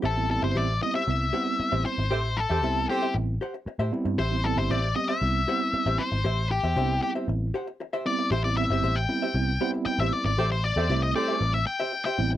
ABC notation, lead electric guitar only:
X:1
M:4/4
L:1/16
Q:1/4=116
K:Am
V:1 name="Lead electric guitar"
A2 A c d2 ^d e6- e c2- | c2 A4 G2 z8 | c2 A c d2 ^d e6- e c2- | c2 G4 G2 z6 d2 |
c d e3 g6 z g e d d- | d c d3 ^d =d3 e g3 g2 z |]